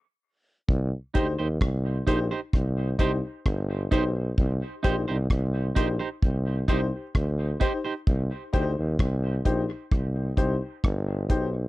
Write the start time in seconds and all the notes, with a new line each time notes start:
0.69 C2, kick
1.14 D2 D#4 G4 C5, kick, closed hi-hat
1.39 D#2 D#4 G4 C5
1.61 C2, kick, cross-stick
2.07 A#1 D#4 G4 C5, kick, closed hi-hat
2.31 D#4 G4 C5
2.53 C2, kick, cross-stick
2.78 G4 C5
2.99 C2 D#4 G4 C5, kick, closed hi-hat
3.46 G1, kick, cross-stick
3.91 B1 D#4 G4 C5, kick, closed hi-hat
4.38 C2, kick
4.83 A#1 D#4 G4 C5, kick, closed hi-hat
5.08 C2 D#4 G4 C5
5.30 C2, kick, cross-stick
5.75 A#1 D#4 G4 C5, kick, closed hi-hat
5.99 D#4 G4 C5
6.22 C2, kick
6.68 C2 D#4 G4 C5, kick, closed hi-hat
6.93 G4 C5
7.15 D2, kick, cross-stick
7.60 D#4 G4 C5, kick, closed hi-hat
7.84 D#4 G4 C5
8.07 C2, kick
8.53 D2 D#4 G4 C5, kick, closed hi-hat
8.79 D#2
8.99 C2, kick, cross-stick
9.45 A#1 D#4 G4 C5, kick, closed hi-hat
9.91 C2, kick, cross-stick
10.16 G4 C5
10.37 C2 D#4 G4 C5, kick, closed hi-hat
10.84 G1, kick, cross-stick
11.29 B1 D#4 G4 C5, kick, closed hi-hat